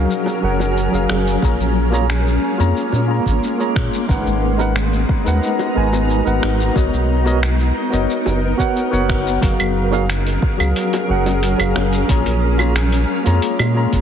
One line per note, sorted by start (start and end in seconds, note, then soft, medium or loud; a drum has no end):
0.00 0.38 F#3 medium
0.00 1.40 F#3 medium
0.00 4.05 C#4 medium
0.00 0.38 F#4 medium
0.00 0.39 G#4 medium
0.00 1.40 G#4 medium
0.00 0.39 A#4 medium
0.00 1.40 A#4 medium
0.00 0.40 F5 medium
0.11 shaker soft
0.26 high bongo medium
0.26 shaker soft
0.41 0.88 F#1 medium
0.41 0.88 F#3 medium
0.41 0.88 F#4 medium
0.41 0.89 G#4 medium
0.41 0.89 A#4 medium
0.41 0.89 F#5 medium
0.60 high bongo soft
0.60 shaker medium
0.77 shaker soft
0.91 1.06 F#1 medium
0.91 1.38 F#3 medium
0.91 1.38 F#4 medium
0.91 1.39 G#4 medium
0.91 1.39 A#4 medium
0.91 1.40 F5 medium
0.91 shaker soft
1.09 1.37 F#1 medium
1.09 finger snap medium
1.09 high bongo medium
1.27 shaker medium
1.41 1.56 A#1 loud
1.41 6.72 G#3 medium
1.41 1.88 A#3 medium
1.41 4.07 A#3 medium
1.41 1.88 F4 medium
1.41 1.88 G#4 medium
1.41 1.89 C#5 medium
1.41 1.89 A#5 medium
1.41 kick loud
1.41 shaker medium
1.59 2.38 A#1 medium
1.59 shaker soft
1.91 2.05 A#3 medium
1.91 2.05 F4 medium
1.91 2.06 G#4 medium
1.91 2.06 C#5 medium
1.91 2.07 A#5 loud
1.91 high bongo medium
1.91 shaker medium
2.10 finger snap medium
2.10 shaker medium
2.27 shaker soft
2.57 2.73 F2 medium
2.57 3.04 A#3 medium
2.57 3.04 F4 medium
2.57 3.05 G#4 medium
2.57 3.05 C#5 medium
2.57 3.06 A#5 medium
2.57 shaker medium
2.77 shaker medium
2.93 3.20 A#2 medium
2.93 high bongo medium
2.93 shaker soft
3.07 3.54 A#3 medium
3.07 3.55 F4 medium
3.07 3.55 G#4 medium
3.07 3.56 C#5 medium
3.07 3.56 A#5 medium
3.26 3.40 G#1 medium
3.26 kick medium
3.26 shaker medium
3.43 shaker medium
3.58 4.04 A#3 medium
3.58 4.05 F4 medium
3.58 4.05 G#4 medium
3.58 4.06 C#5 medium
3.58 4.06 A#5 medium
3.58 shaker soft
3.76 3.89 A#2 medium
3.76 finger snap medium
3.76 kick loud
3.93 shaker medium
4.07 4.23 G#1 medium
4.07 4.54 G#3 medium
4.07 6.73 B3 medium
4.07 4.55 D#4 medium
4.07 9.39 D#4 medium
4.07 6.74 F#4 medium
4.07 4.55 A#4 medium
4.07 4.56 B4 medium
4.07 4.56 F#5 medium
4.07 6.73 A#5 medium
4.07 kick loud
4.07 shaker medium
4.26 5.04 G#1 medium
4.26 shaker soft
4.57 4.71 G#3 medium
4.57 4.72 D#4 medium
4.57 4.72 A#4 medium
4.57 4.73 B4 medium
4.57 4.73 F#5 medium
4.57 high bongo medium
4.57 shaker medium
4.76 finger snap medium
4.76 shaker medium
4.93 shaker soft
5.09 kick loud
5.24 5.40 D#2 medium
5.24 5.71 G#3 medium
5.24 5.71 D#4 medium
5.24 5.72 A#4 medium
5.24 5.72 B4 medium
5.24 5.73 F#5 medium
5.24 shaker medium
5.43 shaker medium
5.59 high bongo medium
5.59 shaker soft
5.74 6.21 G#1 medium
5.74 6.21 G#3 medium
5.74 6.21 D#4 medium
5.74 6.22 A#4 medium
5.74 6.22 B4 medium
5.74 6.23 G#5 medium
5.93 high bongo medium
5.93 shaker medium
6.10 shaker medium
6.24 6.39 G#1 loud
6.24 6.71 G#3 medium
6.24 6.71 D#4 medium
6.24 6.72 A#4 medium
6.24 6.72 B4 medium
6.24 6.72 F#5 medium
6.24 shaker soft
6.43 6.70 G#1 medium
6.43 finger snap medium
6.43 high bongo medium
6.60 shaker medium
6.74 6.89 B1 medium
6.74 7.21 B3 medium
6.74 9.40 B3 medium
6.74 7.21 F#4 medium
6.74 7.22 A#4 medium
6.74 9.40 A#4 medium
6.74 7.22 C#5 medium
6.74 7.22 D#5 medium
6.74 kick loud
6.74 shaker medium
6.93 7.71 B1 medium
6.93 shaker soft
7.24 7.38 B3 medium
7.24 7.38 F#4 medium
7.24 7.39 A#4 medium
7.24 7.39 C#5 medium
7.24 7.40 D#5 medium
7.24 high bongo soft
7.24 shaker medium
7.43 finger snap medium
7.43 shaker soft
7.60 shaker soft
7.90 8.06 F#1 medium
7.90 8.37 B3 medium
7.90 8.38 F#4 medium
7.90 8.38 A#4 medium
7.90 8.38 C#5 medium
7.90 8.39 D#5 medium
7.90 shaker medium
8.10 shaker medium
8.26 8.53 F#1 medium
8.26 high bongo medium
8.26 shaker soft
8.57 8.87 B3 medium
8.57 8.88 F#4 medium
8.57 8.88 A#4 medium
8.57 8.89 C#5 medium
8.57 8.89 F#5 medium
8.57 kick medium
8.57 shaker medium
8.76 shaker soft
8.90 9.38 F#1 medium
8.90 9.37 B3 medium
8.90 9.38 F#4 medium
8.90 9.38 A#4 medium
8.90 9.38 C#5 medium
8.90 9.39 F#5 loud
8.90 shaker soft
9.09 finger snap medium
9.09 kick loud
9.27 shaker medium
9.40 9.56 F#1 medium
9.40 9.87 F#3 medium
9.40 12.06 F#3 medium
9.40 14.01 C#4 medium
9.40 9.88 F#4 medium
9.40 9.88 G#4 medium
9.40 12.06 G#4 medium
9.40 12.06 A#4 medium
9.40 9.89 A#4 medium
9.40 9.89 F5 medium
9.40 kick loud
9.40 closed hi-hat medium
9.40 shaker medium
9.59 10.38 F#1 medium
9.59 closed hi-hat soft
9.59 claves medium
9.59 shaker soft
9.91 10.05 F#3 medium
9.91 10.05 F#4 medium
9.91 10.06 G#4 medium
9.91 10.06 A#4 medium
9.91 10.06 F5 loud
9.91 high bongo medium
9.91 shaker medium
10.10 finger snap medium
10.10 closed hi-hat medium
10.10 shaker medium
10.27 closed hi-hat soft
10.27 shaker soft
10.42 kick loud
10.57 10.73 C#2 medium
10.57 11.04 F#3 medium
10.57 11.04 F#4 medium
10.57 11.05 G#4 medium
10.57 11.05 A#4 medium
10.57 11.06 F5 medium
10.57 closed hi-hat soft
10.57 claves medium
10.57 shaker medium
10.76 closed hi-hat medium
10.76 shaker medium
10.93 closed hi-hat soft
10.93 high bongo medium
10.93 shaker soft
11.07 11.54 F#1 medium
11.07 11.54 F#3 medium
11.07 11.55 F#4 medium
11.07 11.55 G#4 medium
11.07 11.56 A#4 medium
11.07 11.56 F#5 medium
11.26 closed hi-hat soft
11.26 high bongo medium
11.26 shaker medium
11.43 closed hi-hat medium
11.43 shaker medium
11.58 11.73 F#1 loud
11.58 12.04 F#3 medium
11.58 12.05 F#4 medium
11.58 12.05 G#4 medium
11.58 12.06 A#4 medium
11.58 12.06 F5 medium
11.58 closed hi-hat soft
11.58 claves medium
11.58 shaker soft
11.76 12.03 F#1 loud
11.76 finger snap medium
11.76 high bongo medium
11.93 closed hi-hat soft
11.93 shaker medium
12.07 12.23 A#1 medium
12.07 14.01 G#3 medium
12.07 12.54 A#3 medium
12.07 14.01 A#3 medium
12.07 12.55 F4 medium
12.07 12.55 G#4 medium
12.07 12.56 C#5 medium
12.07 12.56 A#5 medium
12.07 kick loud
12.07 closed hi-hat medium
12.07 shaker medium
12.26 13.04 A#1 medium
12.26 closed hi-hat soft
12.26 shaker soft
12.58 12.72 A#3 medium
12.58 12.72 F4 medium
12.58 12.73 G#4 medium
12.58 12.73 C#5 medium
12.58 12.73 A#5 medium
12.58 high bongo medium
12.58 claves medium
12.58 shaker medium
12.76 finger snap medium
12.76 closed hi-hat medium
12.76 shaker soft
12.92 closed hi-hat soft
12.92 shaker soft
13.24 13.40 F2 medium
13.24 13.71 A#3 medium
13.24 13.71 F4 medium
13.24 13.72 G#4 medium
13.24 13.72 C#5 medium
13.24 13.72 A#5 medium
13.24 closed hi-hat soft
13.24 shaker medium
13.42 closed hi-hat medium
13.42 shaker medium
13.59 13.86 A#2 medium
13.59 closed hi-hat soft
13.59 high bongo medium
13.59 claves medium
13.59 shaker soft
13.74 14.01 A#3 medium
13.74 14.01 F4 medium
13.74 14.01 G#4 medium
13.74 14.01 C#5 medium
13.74 14.01 A#5 medium
13.93 14.01 G#1 medium
13.93 kick medium
13.93 closed hi-hat soft
13.93 shaker medium